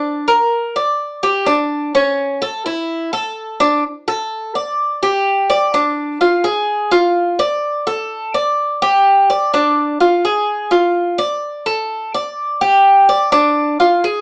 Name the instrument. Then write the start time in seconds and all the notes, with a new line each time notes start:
cuban tres
Already playing: D4
0.28 A#4
0.76 D5
1.23 G4
1.46 D4
1.95 C#4
2.42 A4
2.66 E4
3.13 A4
3.60 D4
4.08 A4
4.55 D5
5.03 G4
5.50 D5
5.74 D4
6.21 F4
6.44 G#4
6.92 F4
7.39 D5
7.87 A4
8.34 D5
8.82 G4
9.30 D5
9.54 D4
10.00 F4
10.25 G#4
10.71 F4
11.18 D5
11.66 A4
12.14 D5
12.61 G4
13.09 D5
13.32 D4
13.80 F4
14.04 G#4